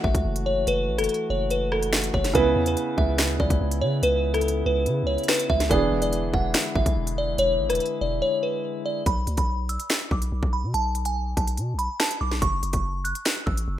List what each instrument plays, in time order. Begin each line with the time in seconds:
Already playing: pipe organ E3 A3 F#4
0.04 808-style bass A1, synth bell E5, kick
0.15 808-style bass C#2, kick, closed hi-hat
0.25 808-style bass F#1
0.36 closed hi-hat
0.46 synth bell C#5
0.67 808-style bass F#1, synth bell B4, closed hi-hat
0.88 808-style bass A1
0.98 808-style bass F#1, synth bell A4, cross-stick, closed hi-hat
1.04 closed hi-hat
1.09 closed hi-hat
1.14 closed hi-hat
1.30 808-style bass F#1, synth bell C#5
1.50 synth bell B4, closed hi-hat
1.72 synth bell A4, cross-stick
1.83 closed hi-hat
1.93 finger snap, snare
2.04 closed hi-hat
2.14 808-style bass F#1, synth bell C#5, kick
2.24 snare, closed hi-hat
2.33 808-style bass C#2, felt piano C#3 B3 E4 B4, pipe organ C#3 B3 E4, synth bell B4, kick, closed hi-hat
2.56 808-style bass E2
2.66 synth bell B4, closed hi-hat
2.77 closed hi-hat
2.98 808-style bass C#2, synth bell E5, kick
3.18 finger snap, snare, closed hi-hat
3.29 808-style bass D2
3.40 808-style bass C#2, synth bell D5, kick
3.50 808-style bass C#2, kick, closed hi-hat
3.61 808-style bass C#2
3.71 closed hi-hat
3.81 808-style bass C#3, synth bell C#5
4.03 808-style bass C#2, synth bell B4, closed hi-hat
4.34 synth bell A4, cross-stick, closed hi-hat
4.41 closed hi-hat
4.48 closed hi-hat
4.66 808-style bass C#2, synth bell B4
4.86 808-style bass C#3, closed hi-hat
5.03 808-style bass C#2
5.07 synth bell C#5
5.18 closed hi-hat
5.24 closed hi-hat
5.28 synth bell B4, finger snap, snare, closed hi-hat
5.34 closed hi-hat
5.39 closed hi-hat
5.50 808-style bass C#2, synth bell E5, kick
5.60 snare, closed hi-hat
5.69 808-style bass E1, pipe organ D3 G#3 E4, felt piano E3 B3 D4 G#4, synth bell D5, kick, closed hi-hat
5.92 808-style bass E1
6.02 synth bell D5, closed hi-hat
6.13 closed hi-hat
6.34 808-style bass E1, synth bell F#5, kick
6.54 finger snap, snare, closed hi-hat
6.75 808-style bass G#1, synth bell E5, kick
6.86 808-style bass B1, kick, closed hi-hat
6.97 808-style bass E1
7.07 closed hi-hat
7.18 synth bell D5
7.38 808-style bass E1, synth bell C#5, closed hi-hat
7.59 808-style bass G#1
7.69 808-style bass E1, synth bell B4, cross-stick, closed hi-hat
7.75 closed hi-hat
7.80 closed hi-hat
7.86 closed hi-hat
8.01 808-style bass E1, synth bell D5
8.22 synth bell C#5
8.43 synth bell B4
8.86 synth bell D5
9.06 808-style bass B1, synth bell B5, kick, closed hi-hat
9.27 808-style bass D2, closed hi-hat
9.37 808-style bass B1, synth bell B5, kick, closed hi-hat
9.69 synth bell E6, closed hi-hat
9.80 closed hi-hat
9.90 finger snap, snare, closed hi-hat
10.11 808-style bass B1, synth bell D6, kick
10.22 closed hi-hat
10.32 808-style bass B1
10.43 808-style bass B1, kick
10.53 synth bell B5
10.64 808-style bass B2
10.74 808-style bass B1, synth bell A5, closed hi-hat
10.95 closed hi-hat
11.05 synth bell G#5, closed hi-hat
11.37 808-style bass B1, synth bell A5, kick, closed hi-hat
11.47 closed hi-hat
11.57 808-style bass B2, closed hi-hat
11.74 808-style bass B1
11.79 synth bell B5, closed hi-hat
12.00 synth bell A5, finger snap, snare
12.11 closed hi-hat
12.21 808-style bass B1, synth bell D6
12.31 snare
12.42 808-style bass F#1, synth bell C#6, kick, closed hi-hat
12.63 808-style bass F#1, closed hi-hat
12.73 808-style bass F#1, synth bell C#6, kick, closed hi-hat
13.04 synth bell F#6, closed hi-hat
13.15 closed hi-hat
13.25 finger snap, snare, closed hi-hat
13.46 808-style bass A1, synth bell E6, kick
13.57 closed hi-hat
13.68 808-style bass F#1